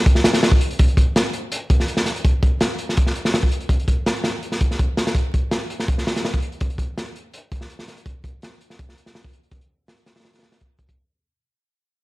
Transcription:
0.06 kick loud
0.06 closed hi-hat medium
0.15 snare soft
0.24 snare loud
0.24 closed hi-hat medium
0.34 snare loud
0.34 closed hi-hat medium
0.43 snare loud
0.43 open hi-hat medium
0.52 kick medium
0.61 closed hi-hat medium
0.71 closed hi-hat soft
0.79 kick loud
0.79 closed hi-hat medium
0.88 closed hi-hat soft
0.97 kick medium
0.97 closed hi-hat medium
1.16 snare loud
1.16 closed hi-hat medium
1.25 closed hi-hat soft
1.33 closed hi-hat medium
1.52 closed hi-hat medium
1.70 kick loud
1.70 closed hi-hat medium
1.80 snare soft
1.88 closed hi-hat medium
1.97 snare medium
2.06 snare soft
2.06 closed hi-hat medium
2.16 closed hi-hat soft
2.25 kick loud
2.25 closed hi-hat medium
2.43 kick loud
2.43 closed hi-hat medium
2.61 snare loud
2.61 closed hi-hat medium
2.78 closed hi-hat medium
2.89 snare soft
2.97 kick loud
2.97 closed hi-hat medium
3.07 snare soft
3.15 closed hi-hat medium
3.25 snare medium
3.33 snare loud
3.33 open hi-hat medium
3.43 kick medium
3.52 closed hi-hat medium
3.60 closed hi-hat soft
3.69 kick loud
3.69 closed hi-hat medium
3.80 closed hi-hat soft
3.88 kick medium
3.88 closed hi-hat medium
4.06 snare loud
4.06 closed hi-hat medium
4.16 closed hi-hat soft
4.24 snare medium
4.24 closed hi-hat medium
4.43 closed hi-hat medium
4.52 snare soft
4.61 kick medium
4.61 closed hi-hat medium
4.71 snare soft
4.79 kick loud
4.79 closed hi-hat medium
4.97 snare medium
4.97 closed hi-hat medium
5.07 snare medium
5.07 closed hi-hat medium
5.15 kick loud
5.15 closed hi-hat medium
5.34 kick medium
5.34 closed hi-hat medium
5.51 snare loud
5.51 closed hi-hat medium
5.70 closed hi-hat medium
5.80 snare soft
5.88 kick loud
5.88 closed hi-hat medium
5.98 snare soft
6.07 snare loud
6.07 closed hi-hat medium
6.16 snare medium
6.16 closed hi-hat medium
6.25 snare loud
6.25 open hi-hat medium
6.34 kick loud
6.42 closed hi-hat medium
6.52 closed hi-hat soft
6.60 kick loud
6.60 closed hi-hat medium
6.70 closed hi-hat soft
6.78 kick medium
6.78 closed hi-hat medium
6.98 snare loud
6.98 closed hi-hat medium
7.07 closed hi-hat soft
7.16 closed hi-hat medium
7.34 closed hi-hat medium
7.52 kick medium
7.52 closed hi-hat medium
7.61 snare soft
7.70 closed hi-hat medium
7.79 snare soft
7.88 snare soft
7.88 closed hi-hat medium
7.97 closed hi-hat soft
8.06 kick loud
8.06 closed hi-hat medium
8.24 kick medium
8.24 closed hi-hat medium
8.42 snare loud
8.42 closed hi-hat medium
8.61 closed hi-hat medium
8.70 snare soft
8.79 kick loud
8.79 closed hi-hat medium
8.89 snare soft
8.98 closed hi-hat medium
9.06 snare medium
9.15 snare loud
9.15 open hi-hat medium
9.24 kick loud
9.33 closed hi-hat medium
9.43 closed hi-hat soft
9.51 kick loud
9.51 closed hi-hat medium
9.61 closed hi-hat soft
9.88 snare loud
9.88 closed hi-hat medium
9.97 closed hi-hat soft
10.06 snare medium
10.06 closed hi-hat medium
10.16 snare medium
10.16 closed hi-hat medium
10.19 snare medium
10.19 closed hi-hat medium
10.25 snare loud
10.25 closed hi-hat medium
10.33 snare medium
10.33 closed hi-hat medium
10.39 snare medium
10.39 closed hi-hat medium
10.42 snare loud
10.42 closed hi-hat medium
10.52 snare loud
10.52 closed hi-hat medium
10.60 kick medium
10.60 closed hi-hat medium
10.79 kick medium
10.79 closed hi-hat medium
10.89 kick medium
10.89 closed hi-hat medium

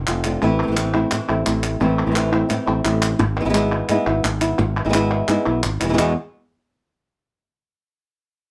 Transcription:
0.07 0.36 F1 medium
0.07 0.24 A3 soft
0.07 0.25 C4 medium
0.07 0.24 F4 medium
0.07 clap loud
0.24 0.42 D3 medium
0.24 0.41 A3 medium
0.24 0.42 C4 medium
0.24 0.42 F4 medium
0.24 clap medium
0.42 0.64 A1 loud
0.42 0.75 E3 medium
0.42 0.76 A3 medium
0.42 0.77 C4 medium
0.42 0.77 E4 medium
0.42 muted nylon-string guitar stroke medium
0.63 0.66 E3 soft
0.63 0.66 A3 soft
0.63 0.67 C4 soft
0.63 0.67 E4 soft
0.67 1.04 A1 medium
0.67 0.70 E3 soft
0.67 0.71 A3 medium
0.67 0.71 C4 medium
0.67 0.71 E4 medium
0.72 0.75 E3 medium
0.72 0.75 A3 medium
0.72 0.76 C4 medium
0.72 0.76 E4 medium
0.76 0.93 E3 medium
0.76 0.93 A3 medium
0.76 0.93 C4 medium
0.76 0.92 E4 medium
0.76 clap medium
0.93 1.10 A3 soft
0.93 1.11 C4 soft
0.93 1.10 E4 soft
1.10 1.19 A2 medium
1.10 1.28 E3 medium
1.10 1.28 A3 medium
1.10 1.28 C4 medium
1.10 1.28 E4 medium
1.10 muted nylon-string guitar stroke medium
1.10 clap medium
1.29 1.44 A1 medium
1.29 1.45 A3 soft
1.29 1.45 C4 soft
1.29 1.45 E4 soft
1.46 1.75 A1 medium
1.46 1.80 A3 soft
1.46 1.80 C4 medium
1.46 1.80 E4 medium
1.46 muted nylon-string guitar stroke medium
1.46 clap medium
1.63 clap medium
1.80 2.02 A1 loud
1.80 2.14 E3 medium
1.80 2.14 A3 medium
1.80 2.15 C4 medium
1.80 2.16 E4 medium
1.80 muted nylon-string guitar stroke medium
2.06 2.42 A1 medium
2.06 2.10 E3 soft
2.06 2.10 A3 soft
2.06 2.11 C4 soft
2.06 2.11 E4 soft
2.11 2.14 E3 medium
2.11 2.15 A3 medium
2.11 2.15 C4 medium
2.11 2.15 E4 medium
2.15 2.32 E3 medium
2.15 2.32 A3 medium
2.15 2.32 C4 medium
2.15 2.31 E4 medium
2.15 clap loud
2.32 2.49 A3 soft
2.32 2.50 C4 soft
2.32 2.49 E4 soft
2.49 2.58 A2 loud
2.49 2.67 E3 medium
2.49 2.67 A3 medium
2.49 2.67 C4 medium
2.49 2.65 E4 medium
2.49 muted nylon-string guitar stroke medium
2.49 clap medium
2.67 2.82 A1 medium
2.67 2.83 A3 soft
2.67 2.84 C4 soft
2.67 2.84 E4 soft
2.84 3.13 A1 loud
2.84 3.20 A3 medium
2.84 3.19 C4 medium
2.84 3.19 E4 medium
2.84 muted nylon-string guitar stroke medium
2.84 clap medium
3.02 clap loud
3.19 3.41 G#1 loud
3.19 muted nylon-string guitar stroke medium
3.36 3.44 B3 soft
3.36 3.45 E4 soft
3.40 3.44 G#3 medium
3.40 3.45 E4 medium
3.45 3.81 G#1 loud
3.45 3.48 G#3 soft
3.45 3.48 B3 soft
3.45 3.49 E4 soft
3.49 3.53 G#3 medium
3.49 3.53 B3 medium
3.49 3.54 E4 medium
3.54 3.88 G#3 medium
3.54 3.88 B3 medium
3.54 3.89 E4 medium
3.54 clap loud
3.89 3.96 G#2 medium
3.89 4.06 G#3 medium
3.89 4.06 B3 medium
3.89 4.05 E4 medium
3.89 clap medium
4.06 4.21 G#1 loud
4.06 4.23 B3 soft
4.06 4.23 E4 soft
4.23 4.53 G#1 medium
4.23 muted nylon-string guitar stroke medium
4.23 clap loud
4.41 4.59 B3 soft
4.41 4.58 E4 soft
4.41 clap medium
4.59 4.80 G#1 loud
4.59 muted nylon-string guitar stroke medium
4.76 4.84 B3 soft
4.76 4.84 E4 soft
4.85 5.21 G#1 medium
4.85 4.88 G#3 soft
4.85 4.89 B3 soft
4.85 4.89 E4 soft
4.89 4.92 G#3 medium
4.89 4.93 B3 medium
4.89 4.94 E4 medium
4.94 5.26 G#3 medium
4.94 5.28 B3 medium
4.94 5.28 E4 medium
4.94 clap medium
5.27 5.36 G#2 loud
5.27 5.45 G#3 medium
5.27 5.45 B3 medium
5.27 5.44 E4 medium
5.27 clap medium
5.45 5.62 B1 medium
5.45 5.62 B3 soft
5.45 5.62 E4 soft
5.63 5.80 G#1 medium
5.63 muted nylon-string guitar stroke medium
5.63 clap loud
5.80 5.97 E1 medium
5.80 5.88 B3 soft
5.80 5.88 E4 medium
5.80 clap medium
5.84 5.88 B2 medium
5.84 5.89 E4 medium
5.88 5.92 B2 medium
5.88 5.92 E3 soft
5.88 5.92 G#3 soft
5.88 5.92 B3 soft
5.88 5.93 E4 soft
5.93 5.96 B2 medium
5.93 5.97 E3 medium
5.93 5.97 G#3 medium
5.93 5.97 B3 medium
5.93 5.97 E4 medium
5.97 6.12 E2 medium
5.97 6.15 E2 medium
5.97 6.12 B2 medium
5.97 6.12 E3 medium
5.97 6.12 G#3 medium
5.97 6.12 B3 medium
5.97 6.12 E4 medium
5.97 clap loud

